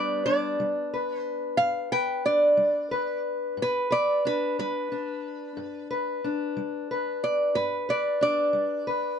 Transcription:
Already playing: steel-string acoustic guitar G2 G3 B3 D4 B4, resonator guitar played with a steel bar D5
0.26 steel-string acoustic guitar D4, resonator guitar played with a steel bar D5
0.60 steel-string acoustic guitar G3
0.94 steel-string acoustic guitar B4
1.19 resonator guitar played with a steel bar C5
1.57 steel-string acoustic guitar G2, resonator guitar played with a steel bar F5
1.92 steel-string acoustic guitar B4, resonator guitar played with a steel bar G5
2.25 steel-string acoustic guitar D4, resonator guitar played with a steel bar D5
2.57 steel-string acoustic guitar G3
2.91 steel-string acoustic guitar B4
3.57 steel-string acoustic guitar G2
3.62 resonator guitar played with a steel bar B4
3.91 steel-string acoustic guitar B4, resonator guitar played with a steel bar D5
4.25 steel-string acoustic guitar D4, resonator guitar played with a steel bar B4
4.59 steel-string acoustic guitar G3, resonator guitar played with a steel bar B4
4.92 steel-string acoustic guitar D4
5.57 steel-string acoustic guitar G2
5.91 steel-string acoustic guitar B4
6.24 steel-string acoustic guitar D4
6.57 steel-string acoustic guitar G3
6.91 steel-string acoustic guitar B4
7.24 resonator guitar played with a steel bar D5
7.55 steel-string acoustic guitar G2, resonator guitar played with a steel bar B4
7.89 steel-string acoustic guitar B4, resonator guitar played with a steel bar D5
8.21 steel-string acoustic guitar D4, resonator guitar played with a steel bar D5
8.53 steel-string acoustic guitar G3
8.87 steel-string acoustic guitar B4

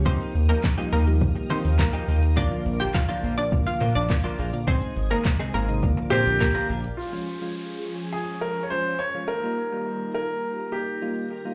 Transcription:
Already playing: analog synth bass C#2
0.05 clean electric guitar F3 A#3 D#4 G4, synth pluck C4 C5, string machine A#4 F5 G5 D#6, kick, shaker
0.21 closed hi-hat, shaker
0.34 analog synth bass D#2, muted clean electric guitar stroke, open hi-hat, shaker
0.49 clean electric guitar F3 A#3 D#4 G4, synth pluck A#3 A#4, closed hi-hat, shaker
0.64 kick, snare, clap, shaker
0.78 synth keys F3 G3 A#3 D#4 F4, clean electric guitar F3 A#3 D#4 G4, closed hi-hat, shaker
0.92 analog synth bass D#2, clean electric guitar F3 A#3 D#4 G4, synth pluck A#3 A#4, open hi-hat, shaker
1.06 synth keys F3 G3 A#3 D#4 G4, closed hi-hat, shaker
1.21 muted clean electric guitar stroke, kick, shaker
1.36 muted clean electric guitar stroke, closed hi-hat, shaker
1.50 analog synth bass D#3, clean electric guitar F3 A#3 D#4 G4, synth pluck C4 C5, open hi-hat, shaker
1.64 analog synth bass D#2, clean electric guitar F3 A#3 D#4 G4, closed hi-hat, shaker
1.79 synth pluck A#3 A#4, muted clean electric guitar stroke, kick, snare, clap, shaker
1.93 clean electric guitar F3 A#3 D#4 G4, closed hi-hat, shaker
2.08 analog synth bass D#2, clean electric guitar F3 A#3 D#4 G4, open hi-hat, shaker
2.22 muted clean electric guitar stroke, closed hi-hat, shaker
2.36 clean electric guitar F3 A#3 D4 F4, synth pluck D4 D5, string machine D5 D6, kick, shaker
2.51 synth keys D3 F3 A#3 D4 F4, closed hi-hat, shaker
2.65 analog synth bass A#1, muted clean electric guitar stroke, open hi-hat, shaker
2.80 clean electric guitar F3 A#3 D4 F4, synth pluck G4 G5, closed hi-hat, shaker
2.94 synth pluck F4 F5, kick, snare, clap, shaker
3.09 synth keys D3 F3 A#3 D4 F4, clean electric guitar F3 A#3 D4 F4, closed hi-hat, shaker
3.23 analog synth bass A#1, clean electric guitar F3 A#3 D4 F4, open hi-hat, shaker
3.38 synth pluck D4 D5, closed hi-hat, shaker
3.52 synth keys D3 F3 A#3 D4 F4, muted clean electric guitar stroke, kick, shaker
3.66 synth pluck F4 F5, muted clean electric guitar stroke, closed hi-hat, shaker
3.81 analog synth bass A#2, clean electric guitar F3 A#3 D4 F4, open hi-hat, shaker
3.95 analog synth bass A#1, clean electric guitar F3 D4 F4, synth pluck D4 D5, closed hi-hat, shaker
4.10 synth keys D3 F3 A#3 D4 F4, muted clean electric guitar stroke, kick, snare, clap, shaker
4.24 clean electric guitar F3 A#3 D4 F4, closed hi-hat, shaker
4.38 analog synth bass A#1, clean electric guitar F3 A#3 D4 F4, synth keys D4 G#4, open hi-hat, shaker
4.53 synth keys D3 F3 A#3 D4 F4, closed hi-hat, shaker
4.67 clean electric guitar G#3 C4 D#4 G#4, synth pluck C4 C5, string machine C5 D#5 G#5 D#6, kick, shaker
4.82 closed hi-hat, shaker
4.96 analog synth bass G#1, muted clean electric guitar stroke, open hi-hat, shaker
5.10 clean electric guitar G#3 C4 D#4 G#4, synth pluck A#3 A#4, closed hi-hat, shaker
5.25 muted clean electric guitar stroke, kick, snare, clap, shaker
5.39 synth keys C3 D#3 G#3 C4 D#4, clean electric guitar G#3 C4 D#4 G#4, closed hi-hat, shaker
5.54 analog synth bass G#1, clean electric guitar G#3 C4 D#4 G#4, synth pluck A#3 A#4, open hi-hat, shaker
5.68 synth keys C3 D#3 G#3 C4 D#4, muted clean electric guitar stroke, closed hi-hat, shaker
5.83 synth keys D3 F3 A#3 D4 F4, string machine A#4 D5 F5 D6, muted clean electric guitar stroke, kick, shaker
5.97 muted clean electric guitar stroke, closed hi-hat, shaker
6.10 analog synth bass A#2, clean electric guitar A#3 D4 F4 A#4, synth pluck C4 C5, grand piano G4, open hi-hat, shaker
6.26 analog synth bass A#1, clean electric guitar A#3 D4 F4 A#4, closed hi-hat, shaker
6.41 synth pluck A#3 A#4, kick, snare, clap, shaker
6.55 clean electric guitar A#3 D4 F4 A#4, closed hi-hat, shaker
6.69 analog synth bass A#1, clean electric guitar A#3 D4 F4 A#4, open hi-hat, shaker
6.84 muted clean electric guitar stroke, closed hi-hat, shaker
6.97 string machine F3 G#3 C#4 G#4 C#5, grand piano F4, downlifter
7.13 synth keys F3 G#3 C#4 F4
7.42 synth keys F3 G#3 C#4 F4
8.12 grand piano G#4
8.41 grand piano A#4
8.63 grand piano C#5
8.70 synth keys F3 G#3 C#4 F4, grand piano C5
8.99 grand piano C#5
9.15 synth keys F3 G#3 C#4 F4
9.28 string machine D#3 G3 A#3 F4 A#4, grand piano A#4
9.44 synth keys G3 A#3 D#4 F4
9.72 synth keys G3 A#3 D#4 F4
10.14 grand piano A#4
10.72 grand piano G4
11.02 synth keys G3 A#3 D#4 F4
11.45 synth keys G3 A#3 D#4 F4

